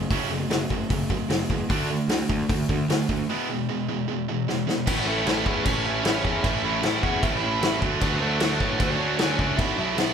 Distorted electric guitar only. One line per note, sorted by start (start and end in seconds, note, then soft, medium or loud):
0.11 0.29 F#3 medium
0.11 0.30 A3 medium
0.11 0.30 C#4 medium
0.31 0.48 F#3 medium
0.31 0.49 A3 medium
0.50 0.68 F#3 medium
0.50 0.68 A3 medium
0.70 0.88 F#3 medium
0.70 0.88 A3 medium
0.90 1.08 F#3 medium
0.90 1.08 A3 medium
1.10 1.28 F#3 medium
1.10 1.28 A3 medium
1.30 1.48 F#3 medium
1.30 1.48 A3 medium
1.50 1.68 F#3 medium
1.50 1.68 A3 medium
1.70 1.89 D3 medium
1.70 1.89 A3 loud
1.70 1.89 D4 loud
1.90 2.08 D3 medium
1.90 2.08 A3 medium
2.10 2.28 D3 medium
2.10 2.28 A3 loud
2.30 2.47 D3 medium
2.30 2.48 A3 medium
2.50 2.67 D3 medium
2.50 2.68 A3 medium
2.70 2.87 D3 medium
2.70 2.87 A3 medium
2.90 3.07 D3 medium
2.90 3.07 A3 medium
3.09 3.27 D3 medium
3.09 3.27 A3 medium
3.30 3.48 E3 medium
3.30 3.48 G#3 medium
3.30 3.48 B3 loud
3.49 3.67 E3 medium
3.49 3.67 G#3 medium
3.69 3.86 E3 medium
3.69 3.87 G#3 loud
3.89 4.06 E3 medium
3.89 4.06 G#3 medium
4.08 4.26 E3 medium
4.08 4.26 G#3 medium
4.29 4.46 E3 medium
4.29 4.46 G#3 medium
4.48 4.66 E3 medium
4.48 4.66 G#3 medium
4.67 4.85 E3 medium
4.67 4.85 G#3 medium
4.86 5.06 A2 medium
4.86 5.06 E3 loud
4.86 5.06 A3 loud
4.86 5.07 C#4 loud
4.86 5.07 E4 loud
5.06 5.25 A2 medium
5.06 5.26 E3 medium
5.06 5.26 A3 medium
5.06 5.26 C#4 loud
5.06 5.27 E4 loud
5.26 5.44 A2 loud
5.26 5.44 E3 loud
5.26 5.46 A3 medium
5.26 5.45 C#4 loud
5.26 5.45 E4 loud
5.45 5.63 A2 medium
5.45 5.64 E3 medium
5.45 5.65 A3 medium
5.45 5.64 C#4 medium
5.45 5.65 E4 medium
5.65 5.83 A2 medium
5.65 5.84 E3 medium
5.65 5.85 A3 medium
5.65 5.85 C#4 medium
5.65 5.85 E4 loud
5.85 6.03 A2 medium
5.85 6.03 E3 medium
5.85 6.05 A3 medium
5.85 6.04 C#4 medium
5.85 6.05 E4 medium
6.04 6.23 A2 medium
6.04 6.23 E3 medium
6.04 6.24 A3 medium
6.04 6.24 C#4 loud
6.04 6.24 E4 medium
6.24 6.42 A2 medium
6.24 6.43 E3 medium
6.24 6.44 A3 medium
6.24 6.43 C#4 medium
6.24 6.44 E4 loud
6.43 6.62 A2 loud
6.43 6.62 E3 loud
6.43 6.63 A3 loud
6.43 6.63 C#4 loud
6.43 6.63 E4 loud
6.63 6.82 A2 medium
6.63 6.82 E3 medium
6.63 6.83 A3 medium
6.63 6.83 C#4 loud
6.63 6.83 E4 loud
6.83 7.01 A2 medium
6.83 7.02 E3 medium
6.83 7.03 A3 loud
6.83 7.03 C#4 medium
6.83 7.03 E4 loud
7.03 7.21 A2 medium
7.03 7.22 E3 medium
7.03 7.22 A3 medium
7.03 7.22 C#4 medium
7.03 7.22 E4 loud
7.22 7.41 A2 medium
7.22 7.41 E3 medium
7.22 7.42 A3 loud
7.22 7.42 C#4 loud
7.22 7.42 E4 loud
7.42 7.60 A2 medium
7.42 7.60 E3 medium
7.42 7.61 A3 medium
7.42 7.61 C#4 medium
7.42 7.61 E4 loud
7.61 7.80 A2 medium
7.61 7.80 E3 medium
7.61 7.81 A3 medium
7.61 7.81 C#4 loud
7.61 7.81 E4 medium
7.82 8.00 D3 loud
7.82 8.01 F#3 loud
7.82 8.01 A3 loud
7.82 8.02 D4 loud
8.01 8.20 D3 loud
8.01 8.21 F#3 loud
8.01 8.21 A3 loud
8.01 8.22 D4 loud
8.21 8.40 D3 medium
8.21 8.41 F#3 loud
8.21 8.40 A3 loud
8.21 8.41 D4 loud
8.41 8.59 D3 loud
8.41 8.60 F#3 medium
8.41 8.59 A3 loud
8.41 8.60 D4 loud
8.60 8.79 D3 medium
8.60 8.79 F#3 medium
8.60 8.79 A3 medium
8.60 8.80 D4 loud
8.80 8.98 D3 medium
8.80 8.99 F#3 loud
8.80 8.99 A3 loud
8.80 9.00 D4 loud
9.00 9.19 D3 medium
9.00 9.19 F#3 medium
9.00 9.20 A3 medium
9.00 9.20 D4 loud
9.20 9.39 D3 medium
9.20 9.39 F#3 medium
9.20 9.40 A3 medium
9.20 9.40 D4 medium
9.40 9.58 D3 medium
9.40 9.58 F#3 medium
9.40 9.58 A3 loud
9.40 9.58 D4 loud
9.60 9.77 B2 medium
9.60 9.78 F#3 loud
9.60 9.78 B3 loud
9.60 9.78 D4 loud
9.79 9.98 B2 medium
9.79 9.98 F#3 loud
9.79 9.98 B3 loud
9.79 9.99 D4 loud
9.99 10.13 B2 medium
9.99 10.13 F#3 medium
9.99 10.13 B3 medium
9.99 10.13 D4 loud